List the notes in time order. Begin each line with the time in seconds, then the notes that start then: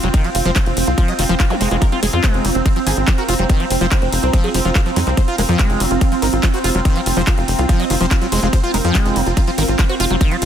Already playing: C4 F4 F5 C6
0.03 F1 F#3 F4, closed hi-hat
0.14 D#3, kick, closed hi-hat, ride
0.22 F#3 F4 A#5, closed hi-hat
0.35 F1 F4, open hi-hat
0.45 F1 F3 C5, closed hi-hat
0.56 F3 F4, kick, clap, closed hi-hat, ride
0.66 F1 F4, closed hi-hat
0.77 F1, open hi-hat
0.87 C2 F4
0.98 F3 F4, kick, closed hi-hat, ride
1.08 F#3 D#5, closed hi-hat
1.19 F1 D#3 F4, open hi-hat
1.29 F1 F3 C5
1.40 F4, kick, clap, closed hi-hat, ride
1.50 F#3 F4, closed hi-hat, zap
1.61 F1 G#3 C5, open hi-hat
1.71 F1 G#3 F4, closed hi-hat
1.82 F3 A#4, kick, closed hi-hat, ride
1.92 C4 F4, closed hi-hat
2.03 F1 G#3 G#4, open hi-hat
2.13 F2 C4 F4, closed hi-hat
2.24 G#3 C4, kick, clap, closed hi-hat, ride
2.34 F1 C4, closed hi-hat
2.45 F1 F#3, open hi-hat
2.55 F1 C4, closed hi-hat
2.66 D#3 C4, kick, closed hi-hat, ride
2.76 F3 C4, closed hi-hat
2.87 G#1 D#3 G#4, open hi-hat
2.97 G#1 C4, closed hi-hat
3.08 F3 C4, kick, clap, closed hi-hat, ride
3.18 F#4 A#4, closed hi-hat
3.29 F1 C4 F4, open hi-hat
3.39 F1 F#3 C4, closed hi-hat
3.50 D#3, kick, closed hi-hat, ride
3.60 F#3 C4, closed hi-hat
3.70 F1 C4, open hi-hat
3.81 F1 F3 C5, closed hi-hat
3.91 F3 C4, kick, clap, closed hi-hat, ride
4.02 F1 C4, closed hi-hat
4.12 F1, open hi-hat
4.23 C2 C4, closed hi-hat
4.33 F3 C4, kick, closed hi-hat, ride
4.44 F#3 G#4, closed hi-hat
4.54 F1 F3 C4, open hi-hat
4.65 F1 F3 F4
4.75 C4 F4, kick, clap, closed hi-hat, ride
4.86 F3 C4, closed hi-hat
4.96 F2 F#3 D#4, open hi-hat
5.07 C2 F3 C4, closed hi-hat
5.17 F3 C5, kick, closed hi-hat, ride
5.28 F4, closed hi-hat
5.38 F1 G#3 A#4, open hi-hat
5.49 F2 F3 F4
5.59 G#3, kick, clap, closed hi-hat, ride
5.70 F1 F4, closed hi-hat
5.80 F1 F#3, open hi-hat
5.91 F1 F4, closed hi-hat
6.01 D#3 F4, kick, closed hi-hat, ride
6.12 F3 F4, closed hi-hat
6.22 G#1 D#3 A#4, open hi-hat
6.33 G#1 F4, closed hi-hat
6.43 F3 F4, kick, clap, closed hi-hat, ride
6.54 F#4 C5, closed hi-hat
6.64 F1 F4, open hi-hat
6.75 F1 F#3 F4, closed hi-hat
6.85 D#3, kick, closed hi-hat, ride
6.96 F#3 F4, closed hi-hat
7.06 F1 F4, open hi-hat
7.17 F1 F3 C5, closed hi-hat
7.27 F3 F4, kick, clap, closed hi-hat, ride
7.38 F1 F4, closed hi-hat
7.48 F1, open hi-hat
7.59 C2 F4, closed hi-hat
7.69 F3 F4, kick, closed hi-hat, ride
7.80 F#3 D#5, closed hi-hat
7.90 F1 D#3 F4, open hi-hat
8.01 F1 F3 C5, closed hi-hat
8.11 F4, kick, clap, closed hi-hat, ride
8.22 F#3 F4, closed hi-hat
8.32 F1 G#3 C5, open hi-hat
8.43 F1 G#3 F4, closed hi-hat
8.53 F3 C5, kick, closed hi-hat, ride
8.64 F4, closed hi-hat
8.74 F1 G#3 A#4, open hi-hat
8.85 F2 F3 F4, closed hi-hat
8.95 G#3 F4, kick, clap, closed hi-hat, ride
9.05 F1 F4, closed hi-hat
9.16 F1 F#3, open hi-hat
9.26 F1 F4, closed hi-hat
9.37 D#3 F4, kick, closed hi-hat, ride
9.47 F3 F4, closed hi-hat
9.58 G#1 D#3 A#4, open hi-hat
9.68 G#1 F4, closed hi-hat
9.79 F3 F4, kick, clap, closed hi-hat, ride
9.89 F#4 C5, closed hi-hat
10.00 F1 F4, open hi-hat
10.10 F1 F#3 F4, closed hi-hat
10.21 D#3, kick, closed hi-hat, ride
10.31 F#3 F4, closed hi-hat
10.42 F1 F4, open hi-hat